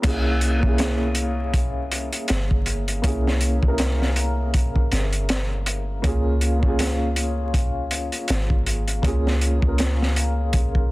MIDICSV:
0, 0, Header, 1, 4, 480
1, 0, Start_track
1, 0, Tempo, 750000
1, 26, Time_signature, 4, 2, 24, 8
1, 6987, End_track
2, 0, Start_track
2, 0, Title_t, "Upright piano"
2, 0, Program_c, 0, 0
2, 0, Control_c, 0, 64, 127
2, 14, Note_on_c, 0, 58, 89
2, 22, Note_on_c, 0, 61, 81
2, 32, Note_on_c, 0, 64, 79
2, 34, Control_c, 0, 64, 0
2, 42, Note_on_c, 0, 68, 96
2, 162, Control_c, 0, 64, 127
2, 365, Note_off_c, 0, 58, 0
2, 369, Note_off_c, 0, 61, 0
2, 374, Note_off_c, 0, 64, 0
2, 378, Note_on_c, 0, 58, 88
2, 379, Note_off_c, 0, 68, 0
2, 398, Note_on_c, 0, 61, 78
2, 417, Note_on_c, 0, 64, 81
2, 437, Note_on_c, 0, 68, 96
2, 1908, Note_off_c, 0, 58, 0
2, 1918, Note_off_c, 0, 61, 0
2, 1928, Note_off_c, 0, 64, 0
2, 1932, Note_on_c, 0, 58, 91
2, 1938, Note_off_c, 0, 68, 0
2, 1942, Note_on_c, 0, 61, 80
2, 1950, Note_on_c, 0, 64, 77
2, 1961, Note_on_c, 0, 68, 101
2, 2284, Note_off_c, 0, 58, 0
2, 2290, Note_off_c, 0, 61, 0
2, 2294, Note_off_c, 0, 64, 0
2, 2298, Note_on_c, 0, 58, 70
2, 2299, Note_off_c, 0, 68, 0
2, 2318, Note_on_c, 0, 61, 69
2, 2336, Note_on_c, 0, 64, 65
2, 2355, Note_on_c, 0, 70, 84
2, 3828, Note_off_c, 0, 58, 0
2, 3838, Note_off_c, 0, 61, 0
2, 3847, Note_off_c, 0, 64, 0
2, 3853, Note_on_c, 0, 58, 92
2, 3857, Note_off_c, 0, 70, 0
2, 3862, Note_on_c, 0, 61, 81
2, 3872, Note_on_c, 0, 65, 83
2, 3875, Control_c, 0, 64, 0
2, 3882, Note_on_c, 0, 68, 107
2, 3990, Control_c, 0, 64, 127
2, 4205, Note_off_c, 0, 58, 0
2, 4209, Note_off_c, 0, 61, 0
2, 4215, Note_off_c, 0, 65, 0
2, 4218, Note_on_c, 0, 58, 88
2, 4220, Note_off_c, 0, 68, 0
2, 4238, Note_on_c, 0, 61, 85
2, 4256, Note_on_c, 0, 65, 80
2, 4275, Note_on_c, 0, 68, 100
2, 5748, Note_off_c, 0, 58, 0
2, 5758, Note_off_c, 0, 61, 0
2, 5767, Note_off_c, 0, 65, 0
2, 5774, Note_on_c, 0, 58, 89
2, 5777, Note_off_c, 0, 68, 0
2, 5784, Note_on_c, 0, 61, 82
2, 5794, Note_on_c, 0, 65, 84
2, 5803, Note_on_c, 0, 68, 106
2, 6125, Note_off_c, 0, 58, 0
2, 6130, Note_off_c, 0, 61, 0
2, 6135, Note_off_c, 0, 65, 0
2, 6137, Note_on_c, 0, 58, 72
2, 6140, Note_off_c, 0, 68, 0
2, 6157, Note_on_c, 0, 61, 66
2, 6175, Note_on_c, 0, 65, 67
2, 6195, Note_on_c, 0, 70, 73
2, 6987, Note_off_c, 0, 58, 0
2, 6987, Note_off_c, 0, 61, 0
2, 6987, Note_off_c, 0, 65, 0
2, 6987, Note_off_c, 0, 70, 0
2, 6987, End_track
3, 0, Start_track
3, 0, Title_t, "808-style bass"
3, 0, Program_c, 1, 38
3, 27, Note_on_c, 1, 36, 100
3, 1339, Note_off_c, 1, 36, 0
3, 1471, Note_on_c, 1, 31, 79
3, 1929, Note_off_c, 1, 31, 0
3, 1946, Note_on_c, 1, 36, 107
3, 2298, Note_off_c, 1, 36, 0
3, 2324, Note_on_c, 1, 36, 78
3, 3126, Note_off_c, 1, 36, 0
3, 3150, Note_on_c, 1, 31, 85
3, 3849, Note_off_c, 1, 31, 0
3, 3867, Note_on_c, 1, 37, 99
3, 5179, Note_off_c, 1, 37, 0
3, 5310, Note_on_c, 1, 32, 81
3, 5768, Note_off_c, 1, 32, 0
3, 5782, Note_on_c, 1, 37, 104
3, 6136, Note_off_c, 1, 37, 0
3, 6161, Note_on_c, 1, 37, 80
3, 6965, Note_off_c, 1, 37, 0
3, 6987, End_track
4, 0, Start_track
4, 0, Title_t, "Drums"
4, 21, Note_on_c, 9, 49, 95
4, 23, Note_on_c, 9, 42, 80
4, 26, Note_on_c, 9, 36, 100
4, 85, Note_off_c, 9, 49, 0
4, 87, Note_off_c, 9, 42, 0
4, 90, Note_off_c, 9, 36, 0
4, 263, Note_on_c, 9, 42, 66
4, 327, Note_off_c, 9, 42, 0
4, 402, Note_on_c, 9, 36, 113
4, 466, Note_off_c, 9, 36, 0
4, 501, Note_on_c, 9, 42, 85
4, 512, Note_on_c, 9, 38, 111
4, 565, Note_off_c, 9, 42, 0
4, 576, Note_off_c, 9, 38, 0
4, 734, Note_on_c, 9, 42, 61
4, 798, Note_off_c, 9, 42, 0
4, 983, Note_on_c, 9, 36, 111
4, 983, Note_on_c, 9, 42, 82
4, 1047, Note_off_c, 9, 36, 0
4, 1047, Note_off_c, 9, 42, 0
4, 1226, Note_on_c, 9, 42, 70
4, 1290, Note_off_c, 9, 42, 0
4, 1360, Note_on_c, 9, 42, 46
4, 1424, Note_off_c, 9, 42, 0
4, 1458, Note_on_c, 9, 42, 79
4, 1472, Note_on_c, 9, 38, 106
4, 1522, Note_off_c, 9, 42, 0
4, 1536, Note_off_c, 9, 38, 0
4, 1605, Note_on_c, 9, 36, 86
4, 1669, Note_off_c, 9, 36, 0
4, 1701, Note_on_c, 9, 42, 70
4, 1765, Note_off_c, 9, 42, 0
4, 1842, Note_on_c, 9, 42, 42
4, 1906, Note_off_c, 9, 42, 0
4, 1944, Note_on_c, 9, 36, 96
4, 1944, Note_on_c, 9, 42, 94
4, 2008, Note_off_c, 9, 36, 0
4, 2008, Note_off_c, 9, 42, 0
4, 2096, Note_on_c, 9, 38, 51
4, 2160, Note_off_c, 9, 38, 0
4, 2180, Note_on_c, 9, 42, 67
4, 2244, Note_off_c, 9, 42, 0
4, 2321, Note_on_c, 9, 36, 94
4, 2385, Note_off_c, 9, 36, 0
4, 2420, Note_on_c, 9, 42, 91
4, 2430, Note_on_c, 9, 38, 121
4, 2484, Note_off_c, 9, 42, 0
4, 2494, Note_off_c, 9, 38, 0
4, 2572, Note_on_c, 9, 38, 50
4, 2636, Note_off_c, 9, 38, 0
4, 2662, Note_on_c, 9, 42, 74
4, 2726, Note_off_c, 9, 42, 0
4, 2904, Note_on_c, 9, 42, 83
4, 2906, Note_on_c, 9, 36, 103
4, 2968, Note_off_c, 9, 42, 0
4, 2970, Note_off_c, 9, 36, 0
4, 3044, Note_on_c, 9, 36, 88
4, 3108, Note_off_c, 9, 36, 0
4, 3146, Note_on_c, 9, 42, 72
4, 3153, Note_on_c, 9, 38, 59
4, 3210, Note_off_c, 9, 42, 0
4, 3217, Note_off_c, 9, 38, 0
4, 3281, Note_on_c, 9, 42, 44
4, 3345, Note_off_c, 9, 42, 0
4, 3385, Note_on_c, 9, 42, 80
4, 3392, Note_on_c, 9, 38, 108
4, 3449, Note_off_c, 9, 42, 0
4, 3456, Note_off_c, 9, 38, 0
4, 3624, Note_on_c, 9, 42, 72
4, 3688, Note_off_c, 9, 42, 0
4, 3865, Note_on_c, 9, 36, 116
4, 3865, Note_on_c, 9, 42, 83
4, 3929, Note_off_c, 9, 36, 0
4, 3929, Note_off_c, 9, 42, 0
4, 4103, Note_on_c, 9, 42, 56
4, 4167, Note_off_c, 9, 42, 0
4, 4242, Note_on_c, 9, 36, 97
4, 4306, Note_off_c, 9, 36, 0
4, 4345, Note_on_c, 9, 42, 91
4, 4355, Note_on_c, 9, 38, 106
4, 4409, Note_off_c, 9, 42, 0
4, 4419, Note_off_c, 9, 38, 0
4, 4584, Note_on_c, 9, 42, 68
4, 4648, Note_off_c, 9, 42, 0
4, 4825, Note_on_c, 9, 36, 118
4, 4826, Note_on_c, 9, 42, 86
4, 4889, Note_off_c, 9, 36, 0
4, 4890, Note_off_c, 9, 42, 0
4, 5061, Note_on_c, 9, 42, 72
4, 5125, Note_off_c, 9, 42, 0
4, 5198, Note_on_c, 9, 42, 39
4, 5262, Note_off_c, 9, 42, 0
4, 5298, Note_on_c, 9, 42, 79
4, 5314, Note_on_c, 9, 38, 107
4, 5362, Note_off_c, 9, 42, 0
4, 5378, Note_off_c, 9, 38, 0
4, 5440, Note_on_c, 9, 36, 83
4, 5504, Note_off_c, 9, 36, 0
4, 5545, Note_on_c, 9, 42, 71
4, 5609, Note_off_c, 9, 42, 0
4, 5681, Note_on_c, 9, 42, 42
4, 5745, Note_off_c, 9, 42, 0
4, 5779, Note_on_c, 9, 36, 98
4, 5788, Note_on_c, 9, 42, 83
4, 5843, Note_off_c, 9, 36, 0
4, 5852, Note_off_c, 9, 42, 0
4, 5933, Note_on_c, 9, 38, 50
4, 5997, Note_off_c, 9, 38, 0
4, 6025, Note_on_c, 9, 42, 69
4, 6089, Note_off_c, 9, 42, 0
4, 6159, Note_on_c, 9, 36, 106
4, 6223, Note_off_c, 9, 36, 0
4, 6260, Note_on_c, 9, 42, 93
4, 6273, Note_on_c, 9, 38, 114
4, 6324, Note_off_c, 9, 42, 0
4, 6337, Note_off_c, 9, 38, 0
4, 6415, Note_on_c, 9, 38, 47
4, 6479, Note_off_c, 9, 38, 0
4, 6505, Note_on_c, 9, 42, 72
4, 6569, Note_off_c, 9, 42, 0
4, 6739, Note_on_c, 9, 42, 79
4, 6743, Note_on_c, 9, 36, 103
4, 6803, Note_off_c, 9, 42, 0
4, 6807, Note_off_c, 9, 36, 0
4, 6880, Note_on_c, 9, 36, 85
4, 6944, Note_off_c, 9, 36, 0
4, 6987, End_track
0, 0, End_of_file